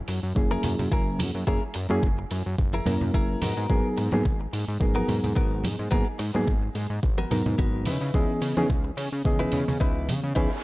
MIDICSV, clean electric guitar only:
0, 0, Header, 1, 3, 480
1, 0, Start_track
1, 0, Key_signature, 5, "minor"
1, 0, Tempo, 555556
1, 1276, Time_signature, 4, 2, 24, 8
1, 9189, End_track
2, 0, Start_track
2, 0, Title_t, "Clean electric guitar"
2, 0, Program_c, 0, 27
2, 442, Note_on_c, 0, 70, 118
2, 443, Note_on_c, 0, 68, 86
2, 447, Note_on_c, 0, 64, 91
2, 619, Note_off_c, 0, 64, 0
2, 619, Note_off_c, 0, 68, 0
2, 620, Note_off_c, 0, 70, 0
2, 791, Note_on_c, 0, 64, 85
2, 796, Note_on_c, 0, 68, 70
2, 803, Note_on_c, 0, 70, 86
2, 1035, Note_off_c, 0, 64, 0
2, 1035, Note_off_c, 0, 68, 0
2, 1036, Note_off_c, 0, 70, 0
2, 1271, Note_on_c, 0, 64, 101
2, 1274, Note_on_c, 0, 68, 84
2, 1280, Note_on_c, 0, 70, 98
2, 1405, Note_off_c, 0, 64, 0
2, 1406, Note_off_c, 0, 68, 0
2, 1407, Note_off_c, 0, 70, 0
2, 2364, Note_on_c, 0, 64, 96
2, 2368, Note_on_c, 0, 68, 78
2, 2370, Note_on_c, 0, 70, 108
2, 2541, Note_off_c, 0, 64, 0
2, 2541, Note_off_c, 0, 68, 0
2, 2543, Note_off_c, 0, 70, 0
2, 2716, Note_on_c, 0, 64, 82
2, 2721, Note_on_c, 0, 68, 69
2, 2725, Note_on_c, 0, 70, 75
2, 2947, Note_off_c, 0, 70, 0
2, 2954, Note_off_c, 0, 68, 0
2, 2955, Note_on_c, 0, 70, 94
2, 2957, Note_off_c, 0, 64, 0
2, 2958, Note_on_c, 0, 66, 67
2, 2960, Note_on_c, 0, 59, 71
2, 3348, Note_off_c, 0, 59, 0
2, 3349, Note_off_c, 0, 66, 0
2, 3349, Note_off_c, 0, 70, 0
2, 4276, Note_on_c, 0, 59, 99
2, 4282, Note_on_c, 0, 70, 109
2, 4283, Note_on_c, 0, 66, 91
2, 4457, Note_off_c, 0, 59, 0
2, 4458, Note_off_c, 0, 66, 0
2, 4459, Note_off_c, 0, 70, 0
2, 4627, Note_on_c, 0, 59, 83
2, 4631, Note_on_c, 0, 66, 71
2, 4638, Note_on_c, 0, 70, 78
2, 4872, Note_off_c, 0, 59, 0
2, 4873, Note_off_c, 0, 66, 0
2, 4874, Note_off_c, 0, 70, 0
2, 5105, Note_on_c, 0, 59, 106
2, 5110, Note_on_c, 0, 66, 91
2, 5113, Note_on_c, 0, 70, 106
2, 5242, Note_off_c, 0, 59, 0
2, 5243, Note_off_c, 0, 66, 0
2, 5243, Note_off_c, 0, 70, 0
2, 6204, Note_on_c, 0, 70, 112
2, 6205, Note_on_c, 0, 66, 90
2, 6207, Note_on_c, 0, 59, 82
2, 6379, Note_off_c, 0, 59, 0
2, 6380, Note_off_c, 0, 66, 0
2, 6381, Note_off_c, 0, 70, 0
2, 6551, Note_on_c, 0, 59, 85
2, 6555, Note_on_c, 0, 66, 72
2, 6561, Note_on_c, 0, 70, 77
2, 6795, Note_off_c, 0, 59, 0
2, 6795, Note_off_c, 0, 66, 0
2, 6795, Note_on_c, 0, 64, 81
2, 6796, Note_off_c, 0, 70, 0
2, 6800, Note_on_c, 0, 71, 89
2, 6802, Note_on_c, 0, 63, 78
2, 7188, Note_off_c, 0, 63, 0
2, 7189, Note_off_c, 0, 64, 0
2, 7189, Note_off_c, 0, 71, 0
2, 8116, Note_on_c, 0, 64, 100
2, 8122, Note_on_c, 0, 71, 113
2, 8123, Note_on_c, 0, 63, 90
2, 8297, Note_off_c, 0, 63, 0
2, 8297, Note_off_c, 0, 64, 0
2, 8298, Note_off_c, 0, 71, 0
2, 8469, Note_on_c, 0, 63, 81
2, 8474, Note_on_c, 0, 71, 94
2, 8478, Note_on_c, 0, 64, 70
2, 8713, Note_off_c, 0, 63, 0
2, 8713, Note_off_c, 0, 64, 0
2, 8714, Note_off_c, 0, 71, 0
2, 8944, Note_on_c, 0, 63, 106
2, 8950, Note_on_c, 0, 71, 107
2, 8954, Note_on_c, 0, 64, 84
2, 9082, Note_off_c, 0, 63, 0
2, 9083, Note_off_c, 0, 64, 0
2, 9083, Note_off_c, 0, 71, 0
2, 9189, End_track
3, 0, Start_track
3, 0, Title_t, "Muted clean electric guitar strokes"
3, 69, Note_on_c, 9, 29, 28
3, 156, Note_off_c, 9, 29, 0
3, 1510, Note_on_c, 9, 29, 81
3, 1596, Note_off_c, 9, 29, 0
3, 1643, Note_on_c, 9, 29, 80
3, 1729, Note_off_c, 9, 29, 0
3, 1756, Note_on_c, 9, 29, 30
3, 1843, Note_off_c, 9, 29, 0
3, 1886, Note_on_c, 9, 29, 29
3, 1972, Note_off_c, 9, 29, 0
3, 1998, Note_on_c, 9, 29, 31
3, 2085, Note_off_c, 9, 29, 0
3, 3435, Note_on_c, 9, 29, 77
3, 3521, Note_off_c, 9, 29, 0
3, 3561, Note_on_c, 9, 29, 78
3, 3648, Note_off_c, 9, 29, 0
3, 3670, Note_on_c, 9, 29, 30
3, 3757, Note_off_c, 9, 29, 0
3, 3799, Note_on_c, 9, 29, 30
3, 3885, Note_off_c, 9, 29, 0
3, 3913, Note_on_c, 9, 29, 30
3, 3999, Note_off_c, 9, 29, 0
3, 5346, Note_on_c, 9, 29, 80
3, 5433, Note_off_c, 9, 29, 0
3, 5480, Note_on_c, 9, 29, 76
3, 5567, Note_off_c, 9, 29, 0
3, 5589, Note_on_c, 9, 29, 30
3, 5675, Note_off_c, 9, 29, 0
3, 5724, Note_on_c, 9, 29, 28
3, 5811, Note_off_c, 9, 29, 0
3, 5834, Note_on_c, 9, 29, 31
3, 5920, Note_off_c, 9, 29, 0
3, 7273, Note_on_c, 9, 29, 94
3, 7359, Note_off_c, 9, 29, 0
3, 7405, Note_on_c, 9, 29, 93
3, 7491, Note_off_c, 9, 29, 0
3, 7515, Note_on_c, 9, 29, 35
3, 7602, Note_off_c, 9, 29, 0
3, 7640, Note_on_c, 9, 29, 30
3, 7726, Note_off_c, 9, 29, 0
3, 7752, Note_on_c, 9, 29, 34
3, 7838, Note_off_c, 9, 29, 0
3, 9189, End_track
0, 0, End_of_file